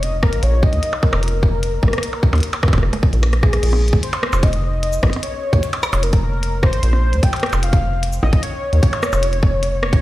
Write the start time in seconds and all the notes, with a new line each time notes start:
Already playing: F1
0.03 D#5, closed hi-hat
0.23 A#4, kick, cross-stick
0.33 A#1, closed hi-hat
0.43 A#1 C#5, closed hi-hat
0.63 D#5, kick
0.73 D#2, closed hi-hat
0.83 closed hi-hat
0.93 percussion blips
1.03 A#4, kick, percussion blips
1.13 F1, cross-stick, percussion blips
1.23 closed hi-hat
1.28 closed hi-hat
1.43 kick
1.63 closed hi-hat
1.83 A#1, kick, cross-stick
1.88 cross-stick
1.93 cross-stick, closed hi-hat
1.98 cross-stick
2.03 closed hi-hat
2.13 percussion blips
2.23 kick
2.33 D#2, closed hi-hat, percussion blips
2.35 closed hi-hat
2.38 closed hi-hat
2.40 closed hi-hat
2.43 closed hi-hat
2.53 closed hi-hat, percussion blips
2.63 kick, cross-stick, percussion blips
2.68 kick, percussion blips
2.73 F1, kick, closed hi-hat, percussion blips
2.78 kick, percussion blips
2.83 F1, cross-stick
2.93 cross-stick, closed hi-hat, percussion blips
3.03 kick
3.13 A#1, closed hi-hat
3.23 cross-stick, closed hi-hat
3.33 cross-stick, closed hi-hat
3.43 G#4, kick, cross-stick
3.53 cross-stick, closed hi-hat
3.63 A#1, closed hi-hat, crash
3.73 percussion blips
3.88 closed hi-hat
3.93 D#2, kick
4.03 C5, closed hi-hat
4.13 closed hi-hat, percussion blips
4.23 cross-stick, percussion blips
4.33 F1, percussion blips, shaker
4.43 D#5, kick, closed hi-hat
4.53 closed hi-hat
4.83 closed hi-hat
4.93 shaker
5.03 A#1, kick, cross-stick, percussion blips
5.10 closed hi-hat, percussion blips
5.16 percussion blips
5.23 C#5, closed hi-hat
5.53 D#2, kick, closed hi-hat
5.63 closed hi-hat
5.73 closed hi-hat, percussion blips
5.83 cross-stick, percussion blips, shaker
5.93 F1, percussion blips, shaker
6.03 A#4, closed hi-hat
6.13 kick, closed hi-hat
6.23 A#4
6.43 closed hi-hat
6.63 C5, kick, cross-stick
6.73 A#1, closed hi-hat
6.83 A#1, closed hi-hat
6.93 percussion blips
7.13 D#2, closed hi-hat
7.23 G5, kick, closed hi-hat
7.33 closed hi-hat, percussion blips
7.36 closed hi-hat
7.40 cross-stick, closed hi-hat
7.43 closed hi-hat, percussion blips
7.46 closed hi-hat
7.50 F1, closed hi-hat, percussion blips, shaker
7.63 F5, closed hi-hat
7.73 kick, closed hi-hat
8.03 closed hi-hat
8.13 shaker
8.23 A#1 D#5, cross-stick, percussion blips
8.33 kick, closed hi-hat
8.43 C#5, closed hi-hat
8.73 D#2, closed hi-hat
8.83 kick, closed hi-hat
8.93 closed hi-hat, percussion blips
9.03 cross-stick, percussion blips, shaker
9.13 F1, percussion blips, shaker
9.23 closed hi-hat
9.33 closed hi-hat
9.43 kick
9.63 closed hi-hat
9.83 C#5, cross-stick
9.93 A#1, kick, closed hi-hat